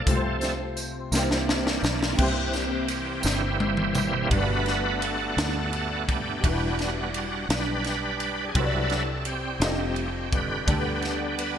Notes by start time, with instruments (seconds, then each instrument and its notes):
Already playing: tonewheel organ A4, upright piano D5
0.06 fingered electric bass C2, upright piano C3 A3 C4 F4 B4, tonewheel organ F3 A3 C4, kick, closed hi-hat
0.16 upright piano C5
0.41 snare, closed hi-hat, tambourine
0.77 closed hi-hat, tambourine
1.12 fingered electric bass C2, tonewheel organ E3 A#3 D4, upright piano A#3 C4 E4 G4, snare, tambourine
1.16 upright piano C5
1.31 snare
1.49 snare
1.67 snare
1.83 fingered electric bass B1, snare, tambourine
2.03 snare
2.15 fingered electric bass C2, upright piano A#3 C4 E4, kick, crash
2.19 upright piano C3 G4 C5, tonewheel organ E3 G3 A#3 C4 G4
2.53 snare, ride, tambourine
2.88 ride, tambourine
3.23 fingered electric bass G1, tonewheel organ E4 G4 C5, snare, tambourine
3.60 high tom
3.77 mid tom
3.95 mid tom, tambourine
4.27 fingered electric bass G1, upright piano G3 B3, tonewheel organ A3 B3
4.31 upright piano G2 D4 F#4, tonewheel organ D4 F#4 B4, kick, ride
4.35 upright piano B4
4.66 snare, ride
5.02 tonewheel organ D4 F#4 A4, ride
5.37 fingered electric bass D2, snare, ride
5.73 ride
6.09 tonewheel organ B3 D4 G4, kick, ride
6.40 upright piano E3 G3 D4 E4, tonewheel organ G3
6.44 fingered electric bass E1, tonewheel organ D4 F#4, upright piano F#4, kick, ride
6.48 upright piano B4
6.79 snare, ride
7.14 tonewheel organ F#4, ride
7.49 fingered electric bass B1, tonewheel organ G3 D4 B4, snare, ride
7.84 snare, ride
8.20 ride
8.48 tonewheel organ G#4
8.54 fingered electric bass C2, upright piano C3 C4 E4 F#4 B4, tonewheel organ F#3 D4 E4 A4 B4, kick, ride
8.59 upright piano C#5
8.65 upright piano D5
8.90 snare, ride
9.20 tonewheel organ A4
9.25 tonewheel organ C4 G4, ride
9.60 fingered electric bass F1, tonewheel organ G3 A3 D#4, upright piano C4 F4 G4 A4, snare, ride
9.64 upright piano D#5
9.96 ride
10.32 tonewheel organ D3 G4 B4, kick, ride
10.67 fingered electric bass D2, upright piano D3 D4 G4 A4, tonewheel organ G3 B3 D4, kick, ride
10.77 upright piano B4
11.02 snare, ride
11.39 tonewheel organ B4, ride